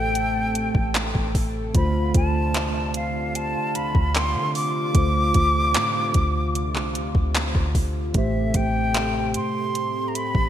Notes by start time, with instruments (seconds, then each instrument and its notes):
Already playing: 808-style bass A1, tine electric piano A2 A3 G4 C5, analog synth pad C3 A3 A4, flute G5
0.15 closed hi-hat
0.55 closed hi-hat
0.75 808-style bass A1, kick
0.95 clap, closed hi-hat
1.15 808-style bass A1, kick
1.35 kick, open hi-hat
1.74 808-style bass D2, tine electric piano D3 A3 F4 C5, analog synth pad D3 F4, flute B5, kick, closed hi-hat
2.14 808-style bass D2, flute A5, kick, closed hi-hat
2.54 clap, closed hi-hat
2.94 flute F5, closed hi-hat
3.35 flute A5, closed hi-hat
3.55 808-style bass D3
3.75 808-style bass D2, flute B5, closed hi-hat
3.95 808-style bass D2, kick
4.15 flute C6, clap, closed hi-hat
4.35 808-style bass D3
4.55 flute D6, open hi-hat
4.94 808-style bass D2, tine electric piano D3 A3 F4 C5, kick, closed hi-hat
5.34 808-style bass D2, kick, closed hi-hat
5.74 808-style bass A2, clap, closed hi-hat
6.14 808-style bass D2, kick, closed hi-hat
6.55 closed hi-hat
6.75 808-style bass C2, clap
6.95 808-style bass D2, closed hi-hat
7.15 808-style bass D2, kick
7.35 clap, closed hi-hat
7.55 808-style bass D2, kick
7.75 kick, open hi-hat
8.14 808-style bass A1, tine electric piano A2 A3 G4, analog synth pad A3 G4, flute E5, kick, closed hi-hat
8.18 tine electric piano C5
8.54 808-style bass A1, flute G5, kick, closed hi-hat
8.94 clap, closed hi-hat
9.34 808-style bass A2, flute C6, closed hi-hat
9.75 closed hi-hat
10.08 flute A#5
10.15 flute B5, closed hi-hat
10.35 808-style bass A1, kick